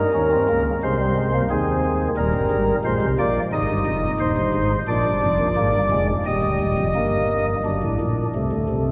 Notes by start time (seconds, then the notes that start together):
Already playing: D#4 A#4
0.14 D#2 D#3 C#4
0.32 C4
0.49 C#2 C#3 A#3
0.83 C2 C3 G#3 C5
1.00 G3
1.17 G#3
1.33 A#3
1.50 D#2 D#3 C4 G#4
2.17 D#1 D#2 G3 A#4
2.34 G1 G2
2.51 G#1 G#2
2.85 A#1 A#2 G#3 C5
3.02 C2 C3
3.19 A#1 A#2 A#3 D5
3.53 G#1 G#2 D#4 D#5
3.70 G1 G2
3.86 F1 F2
4.20 D#1 D#2 C5
4.37 G1 G2
4.54 G#1 G#2
4.88 A#1 A#2 D4 D5
5.05 G1 G2
5.23 F1 F2
5.39 A#1 A#2
5.57 G#1 G#2 A#3
5.75 G1 G2
5.91 F1 F2 G#3
6.26 D#1 D#2 G3 D#5
6.43 D1 D2
6.60 D#1 D#2
6.78 F1 F2
6.95 G1 G2 A#3
7.65 F#1 F#2 D4
7.83 A1 A2
8.00 A#1 A#2
8.35 C2 C3 A3
8.52 D2 D3
8.69 C2 C3